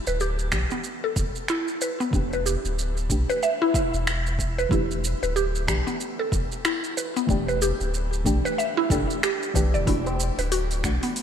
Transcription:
0.00 0.48 E3 medium
0.00 0.49 A3 medium
0.00 0.50 D4 medium
0.00 0.50 G4 medium
0.07 0.53 D1 medium
0.07 0.20 B4 medium
0.07 shaker soft
0.20 0.31 G4 medium
0.20 shaker soft
0.39 shaker soft
0.52 0.65 B1 medium
0.52 0.66 E3 medium
0.52 0.66 A3 medium
0.52 0.66 D4 medium
0.52 0.66 G4 medium
0.52 finger snap medium
0.52 kick medium
0.52 shaker medium
0.71 0.79 B3 medium
0.71 shaker soft
0.84 shaker soft
1.04 1.16 A4 medium
1.16 1.30 E1 medium
1.16 kick loud
1.16 shaker medium
1.35 shaker soft
1.48 1.67 E4 loud
1.48 finger snap medium
1.48 shaker soft
1.68 shaker soft
1.81 1.92 B4 medium
1.81 shaker medium
2.00 2.13 B3 medium
2.00 shaker soft
2.11 2.56 E1 loud
2.11 3.06 E3 medium
2.11 3.06 A3 medium
2.11 3.07 D4 medium
2.11 kick loud
2.11 shaker soft
2.15 3.08 G4 medium
2.33 2.45 B4 medium
2.33 shaker soft
2.46 3.09 G4 medium
2.46 shaker medium
2.64 3.11 D1 medium
2.64 shaker soft
2.79 shaker soft
2.97 shaker soft
3.09 3.23 B1 medium
3.09 3.24 E3 medium
3.09 3.24 A3 medium
3.09 3.24 D4 medium
3.09 3.25 G4 medium
3.09 kick medium
3.09 shaker medium
3.30 3.42 B4 loud
3.30 shaker soft
3.43 3.53 E5 medium
3.43 shaker soft
3.62 3.73 E4 loud
3.74 4.38 E5 medium
3.74 kick medium
3.74 shaker medium
3.93 4.65 E1 loud
3.93 shaker soft
4.07 finger snap medium
4.07 shaker soft
4.26 shaker soft
4.39 kick medium
4.39 shaker medium
4.58 4.71 B4 loud
4.58 shaker soft
4.69 5.14 E1 loud
4.69 5.64 E3 medium
4.69 5.64 A3 medium
4.69 5.65 D4 medium
4.69 5.21 E4 medium
4.69 5.66 G4 medium
4.69 kick loud
4.69 shaker soft
4.91 shaker soft
5.04 shaker medium
5.22 5.69 D1 medium
5.22 5.35 B4 medium
5.22 shaker soft
5.36 5.47 G4 medium
5.36 shaker soft
5.55 shaker soft
5.67 5.81 B1 medium
5.67 5.81 E3 medium
5.67 5.82 A3 medium
5.67 5.82 D4 medium
5.67 5.82 G4 medium
5.67 finger snap medium
5.67 kick medium
5.67 shaker medium
5.87 5.95 B3 medium
5.87 shaker soft
6.00 shaker soft
6.19 6.32 A4 medium
6.32 6.46 E1 medium
6.32 kick loud
6.32 shaker medium
6.52 shaker soft
6.65 6.83 E4 medium
6.65 finger snap medium
6.65 shaker soft
6.84 shaker soft
6.97 7.08 B4 medium
6.97 shaker medium
7.16 7.29 B3 medium
7.16 shaker soft
7.27 7.72 E1 loud
7.27 8.22 E3 medium
7.27 8.22 A3 medium
7.27 8.23 D4 medium
7.27 8.24 G4 medium
7.27 kick loud
7.27 shaker soft
7.48 7.61 B4 medium
7.48 shaker soft
7.62 8.25 G4 medium
7.62 shaker medium
7.80 8.27 D1 medium
7.80 shaker soft
7.94 shaker soft
8.13 shaker soft
8.24 8.40 B1 medium
8.24 8.39 E3 medium
8.24 8.39 A3 medium
8.24 8.40 D4 medium
8.24 8.40 G4 medium
8.24 kick medium
8.24 shaker medium
8.45 8.58 B4 loud
8.45 shaker soft
8.58 8.69 E5 medium
8.58 shaker soft
8.77 8.89 E4 loud
8.89 9.04 G1 medium
8.89 9.51 E3 medium
8.89 9.52 A3 medium
8.89 9.52 D4 medium
8.89 9.52 G4 medium
8.89 9.09 A4 medium
8.89 kick loud
8.89 shaker medium
9.10 shaker soft
9.23 9.40 G4 medium
9.23 finger snap medium
9.23 shaker soft
9.43 shaker soft
9.54 9.75 B1 medium
9.54 9.76 E3 medium
9.54 9.76 A3 medium
9.54 9.76 D4 medium
9.54 9.77 G4 medium
9.54 9.66 B4 medium
9.54 kick medium
9.54 shaker medium
9.74 9.84 E1 medium
9.74 9.86 D5 medium
9.74 shaker soft
9.85 10.30 E1 loud
9.85 10.80 E3 medium
9.85 10.81 A3 medium
9.85 10.81 D4 medium
9.85 10.37 E4 medium
9.85 10.82 F#4 medium
9.85 kick loud
9.85 open hi-hat soft
9.85 shaker soft
10.06 tabla na medium
10.06 tabla tin medium
10.06 shaker soft
10.20 shaker medium
10.38 10.85 D1 medium
10.38 10.51 B4 medium
10.38 open hi-hat soft
10.38 shaker soft
10.52 10.63 F#4 medium
10.52 open hi-hat medium
10.52 shaker soft
10.71 open hi-hat soft
10.71 shaker soft
10.83 10.98 B1 medium
10.83 10.98 E3 medium
10.83 10.98 A3 medium
10.83 10.98 D4 medium
10.83 10.99 F#4 medium
10.83 finger snap medium
10.83 kick medium
10.83 shaker medium
11.03 11.11 B3 medium
11.03 open hi-hat soft
11.03 shaker soft
11.16 open hi-hat medium
11.16 shaker soft

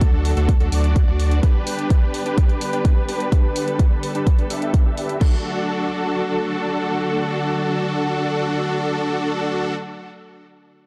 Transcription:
0.00 0.34 D2 medium
0.00 1.39 D3 medium
0.00 1.39 F#3 medium
0.00 1.39 A3 medium
0.00 0.34 D4 medium
0.00 0.34 F#4 medium
0.00 1.39 F#4 medium
0.00 0.34 A4 medium
0.00 1.39 A4 medium
0.00 kick loud
0.00 closed hi-hat medium
0.25 open hi-hat medium
0.37 0.58 D2 medium
0.37 0.50 D4 medium
0.37 0.50 F#4 medium
0.37 0.50 A4 loud
0.37 closed hi-hat soft
0.49 kick loud
0.49 closed hi-hat medium
0.60 0.70 D2 medium
0.60 0.69 D4 medium
0.60 0.69 F#4 medium
0.60 0.69 A4 medium
0.60 closed hi-hat soft
0.72 1.05 D2 loud
0.72 1.05 D4 medium
0.72 1.05 F#4 medium
0.72 1.05 D5 medium
0.72 open hi-hat loud
0.84 closed hi-hat soft
0.96 kick loud
0.96 closed hi-hat medium
1.08 1.41 D2 medium
1.08 1.40 D4 medium
1.08 1.40 F#4 medium
1.08 1.40 D5 medium
1.20 open hi-hat medium
1.31 closed hi-hat soft
1.43 5.17 D3 medium
1.43 5.17 G3 medium
1.43 5.17 B3 medium
1.43 2.23 D4 medium
1.43 2.23 G4 medium
1.43 3.30 G4 medium
1.43 2.23 B4 medium
1.43 5.17 B4 medium
1.43 kick loud
1.43 closed hi-hat medium
1.67 open hi-hat loud
1.79 closed hi-hat soft
1.90 kick loud
1.90 closed hi-hat medium
2.14 open hi-hat medium
2.26 2.70 D4 medium
2.26 2.70 G4 medium
2.26 2.70 B4 medium
2.26 closed hi-hat soft
2.38 kick loud
2.38 closed hi-hat medium
2.49 closed hi-hat soft
2.61 open hi-hat loud
2.73 3.06 D4 medium
2.73 3.06 G4 medium
2.73 3.06 B4 medium
2.73 closed hi-hat soft
2.85 kick loud
2.85 closed hi-hat medium
3.08 3.29 D4 medium
3.08 3.29 G4 medium
3.08 3.29 B4 medium
3.08 open hi-hat medium
3.20 closed hi-hat soft
3.32 4.12 D4 medium
3.32 4.12 G4 medium
3.32 5.19 A4 medium
3.32 4.12 B4 medium
3.32 kick loud
3.32 closed hi-hat medium
3.56 open hi-hat loud
3.68 closed hi-hat soft
3.79 kick loud
3.79 closed hi-hat medium
4.03 open hi-hat medium
4.15 4.28 D4 medium
4.15 4.28 G4 medium
4.15 4.28 B4 loud
4.15 closed hi-hat soft
4.27 kick loud
4.27 closed hi-hat medium
4.38 4.47 D4 medium
4.38 4.47 G4 medium
4.38 4.47 B4 medium
4.38 closed hi-hat soft
4.50 4.83 D4 medium
4.50 4.83 G4 medium
4.50 4.83 E5 medium
4.50 open hi-hat loud
4.62 closed hi-hat soft
4.74 kick loud
4.74 closed hi-hat medium
4.86 5.18 D4 medium
4.86 5.18 G4 medium
4.86 5.18 E5 medium
4.97 open hi-hat medium
5.09 closed hi-hat soft
5.21 9.75 D3 medium
5.21 9.75 F#3 medium
5.21 9.75 A3 medium
5.21 9.75 D4 medium
5.21 9.75 F#4 medium
5.21 9.75 A4 medium
5.21 kick loud
5.21 crash medium

